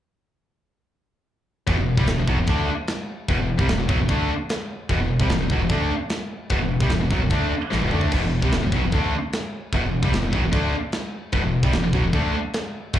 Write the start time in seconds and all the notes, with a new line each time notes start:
1.67 E1 E2 B2, kick, china
1.77 E1 E2 B2
1.97 C2 C3 G3, kick
2.07 E1 E2 B2, snare, china
2.19 E1 E2 B2
2.28 B1 B2 F#3, kick
2.38 E1 E2 B2
2.47 D2 D3 A3 D4, kick, china
2.87 snare, china
3.28 E1 E2 B2, kick, china
3.38 E1 E2 B2
3.58 C2 C3 G3, kick
3.68 E1 E2 B2, snare, china
3.78 E1 E2 B2
3.88 B1 B2 F#3, kick
4.00 E1 E2 B2
4.08 D2 D3 A3 D4, kick, china
4.49 snare, china
4.89 E1 E2 B2, kick, china
5.00 E1 E2 B2
5.20 C2 C3 G3, kick
5.29 E1 E2 B2, snare, china
5.40 E1 E2 B2
5.50 B1 B2 F#3, kick
5.61 E1 E2 B2
5.69 D2 D3 A3 D4, kick, china
6.09 snare, china
6.49 E1 E2 B2, kick, china
6.60 E1 E2 B2
6.80 C2 C3 G3, kick
6.89 E2 B2, snare, china
6.93 E1
7.00 E1 E2 B2
7.11 B1 B2 F#3, kick
7.21 E1 E2 B2
7.30 D2 D3 A3 D4, kick, china
7.71 A1 A2 E3, snare
7.80 E1 E2 B2, high tom
7.91 D2 D3 A3 D4, mid tom
8.01 floor tom
8.11 E1 E2 B2, kick, china, splash, crash
8.23 E1 E2 B2
8.42 C2 C3 G3, kick
8.52 E1 E2 B2, snare, china
8.63 E1 E2 B2
8.72 B1 B2 F#3, kick
8.83 E1 E2 B2
8.92 D2 D3 A3 D4, kick, china
9.33 snare, china
9.73 E1 E2 B2, kick, china
9.82 E1 E2 B2
10.02 C2 C3 G3, kick
10.13 E1 E2 B2, snare, china
10.23 E1 E2 B2
10.32 B1 B2 F#3, kick
10.41 E1 E2 B2
10.51 D2 D3 A3 D4, kick, china
10.92 snare, china
11.32 E1 E2 B2, kick, china
11.43 E1 E2 B2
11.63 C2 C3 G3, kick
11.73 E1 E2 B2, snare, china
11.84 E1 E2 B2
11.93 B1 B2 F#3, kick
12.04 E1 E2 B2
12.13 D2 D3 A3 D4, kick, china
12.53 snare, china
12.93 E1 E2 B2, kick, china